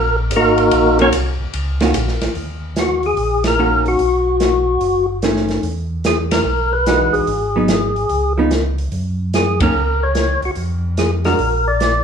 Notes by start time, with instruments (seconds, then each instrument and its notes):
Already playing: tonewheel organ A#1 A#4
0.31 tonewheel organ G#1, hi-hat pedal, ride
0.36 tonewheel organ A#3 D#4 F#4 A#4
0.58 ride
0.71 tonewheel organ A#1, ride
0.99 hollow-body jazz guitar D#3 A#3 C#4 F#4, tonewheel organ C#4 F#4 A#4 C#5, ride
1.12 tonewheel organ C2, hi-hat pedal, ride
1.39 tonewheel organ C2
1.53 tonewheel organ C#2, ride
1.80 hollow-body jazz guitar D#3 A#3 C#4 F#4, snare, ride
1.94 tonewheel organ A#1, hi-hat pedal, ride
2.08 snare
2.21 tonewheel organ A#1, snare, ride
2.35 tonewheel organ D#2, open hi-hat
2.76 tonewheel organ F#4, snare, closed hi-hat
3.03 tonewheel organ G#4, open hi-hat
3.17 tonewheel organ A#1, open hi-hat
3.44 tonewheel organ A#4, snare, ride
3.59 hollow-body jazz guitar D#3 A#3 C#4 F#4
3.86 tonewheel organ F#4, open hi-hat
3.99 tonewheel organ B1, open hi-hat
4.40 snare, closed hi-hat
4.81 tonewheel organ F#1, open hi-hat
5.22 hollow-body jazz guitar D#3 A3 C#4, snare, closed hi-hat
5.36 snare
5.49 snare, open hi-hat
5.63 tonewheel organ E2, open hi-hat
6.04 tonewheel organ G#4, snare, closed hi-hat
6.31 tonewheel organ A#4, snare, ride
6.45 tonewheel organ B1
6.73 tonewheel organ B4
6.86 hollow-body jazz guitar E3 G#3 D#4 F#4, snare, closed hi-hat
7.13 tonewheel organ B1 G#4, open hi-hat
7.27 tonewheel organ G#1, open hi-hat
7.56 hollow-body jazz guitar F#3 B3 D#4
7.68 snare, closed hi-hat
7.96 open hi-hat
8.09 tonewheel organ C#2, open hi-hat
8.38 hollow-body jazz guitar F3 B3 D#4
8.51 snare, closed hi-hat
8.78 open hi-hat
8.92 tonewheel organ F#2, open hi-hat
9.34 tonewheel organ G#4, snare, closed hi-hat
9.60 hollow-body jazz guitar D#3 A#3 C#4, tonewheel organ A#4, kick, ride
9.74 tonewheel organ C#2
10.03 tonewheel organ C#5
10.15 snare, closed hi-hat
10.42 tonewheel organ C#2 F#4, open hi-hat
10.55 tonewheel organ F2, open hi-hat
10.97 tonewheel organ G#4, snare, closed hi-hat
11.25 hollow-body jazz guitar G#3 D4 F#4, tonewheel organ A#4, snare, open hi-hat
11.39 tonewheel organ A#1, open hi-hat
11.68 tonewheel organ D5
11.80 snare, closed hi-hat